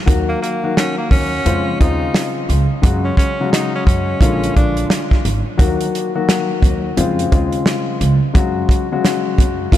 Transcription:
0.06 upright bass D#2, grand piano D#3 F#3 A#3 F#4, kick, closed hi-hat
0.29 tenor saxophone A#3
0.42 tenor saxophone A#3, closed hi-hat
0.63 grand piano D#3 F#3 A#3 F#4
0.77 tenor saxophone C#4, snare, closed hi-hat
0.98 tenor saxophone A#3
1.11 upright bass D#2, tenor saxophone C#4, kick, open hi-hat
1.46 upright bass F2, grand piano C#3 G#3 F4 C5, closed hi-hat
1.80 upright bass D#2, grand piano C#3 G#3 C4 F4, tenor saxophone D#4, kick, closed hi-hat
2.14 snare, closed hi-hat
2.49 upright bass C#2, closed hi-hat
2.82 upright bass F#2, grand piano C#3 F#3 G#3 F#4, kick, closed hi-hat
3.04 tenor saxophone C#4
3.17 tenor saxophone C#4, kick, closed hi-hat
3.40 grand piano C#3 F#3 G#3 F#4
3.52 tenor saxophone D#4, snare, closed hi-hat
3.75 tenor saxophone C#4
3.86 upright bass F#2, tenor saxophone C#4, kick, closed hi-hat
4.21 upright bass A#1, grand piano D3 G#3 A#3 F4, kick, closed hi-hat
4.44 closed hi-hat
4.56 upright bass A#1, tenor saxophone D4, kick, closed hi-hat
4.77 closed hi-hat
4.90 snare, closed hi-hat
5.11 kick, snare
5.25 upright bass G#1, closed hi-hat
5.57 upright bass D#2, grand piano D#3 F#3 A#3 F#4, kick, closed hi-hat
5.81 closed hi-hat
5.95 closed hi-hat
6.15 grand piano D#3 F#3 A#3 F#4
6.29 snare, closed hi-hat
6.62 upright bass D#2, kick, closed hi-hat
6.97 upright bass F2, grand piano C#3 G#3 C4 F4, closed hi-hat
7.19 closed hi-hat
7.32 upright bass D#2, grand piano C#3 G#3 C4 F4, kick, closed hi-hat
7.53 closed hi-hat
7.66 snare, closed hi-hat
8.01 upright bass C#2, closed hi-hat
8.34 upright bass F#2, grand piano C#3 F#3 G#3 F#4, kick, closed hi-hat
8.69 kick, closed hi-hat
8.92 grand piano C#3 F#3 G#3 F#4
9.05 snare, closed hi-hat
9.38 upright bass F#2, kick, closed hi-hat
9.72 upright bass A#1, grand piano D3 G#3 A#3 F4, kick, closed hi-hat

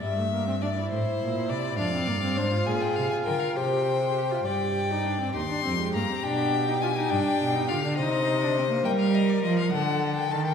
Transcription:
0.02 cello G2, viola G3, violin E5
0.18 viola A3
0.32 viola A#3
0.48 viola C4
0.61 viola D4, violin D5
0.76 viola E4
0.91 cello A2, violin C5
1.21 cello A#2
1.49 cello C3, violin D5
1.78 cello F2, viola D4, violin D5 F5
1.93 viola C4
2.08 cello G2, viola A#3
2.23 viola C4
2.37 cello G#2, viola D4, violin C5
2.53 viola F4
2.66 cello A#2, violin G#4 G#5
2.81 violin G5
2.95 cello C3, violin F5
3.10 violin G#5
3.24 cello D3, violin A#4 G5
3.39 violin F5
3.55 cello C3, viola G4, violin C5 G5
4.00 viola G#4
4.16 viola G4
4.31 viola F4
4.45 cello G2, viola G4, violin D5 G5
4.91 viola D#4
5.06 viola D4
5.21 viola C4
5.34 cello D#2, viola D#4, violin G4 C6
5.50 viola D4
5.65 cello F2, viola C4
5.80 viola G#3
5.94 cello G2, viola A#3, violin A#5
6.10 viola C4
6.23 cello B2, viola D4, violin G5
6.69 viola D#4
6.81 viola F4, violin G#5
6.97 viola D#4
7.10 cello G2, viola D4, violin G5
7.41 cello B2
7.55 viola D#4
7.68 cello D3, viola F4, violin F5
7.84 viola D4
7.97 cello C3, viola D#4, violin C5 D#5
8.43 viola D4
8.58 viola C4
8.71 viola A#3
8.84 cello G3, violin A#4 G5
8.99 violin F5
9.14 violin D#5
9.29 violin D5
9.44 cello F3, violin D#5
9.59 violin F5
9.72 cello D3, violin A4 F#5
10.16 violin G5
10.31 cello D#3, violin A5
10.45 violin G5

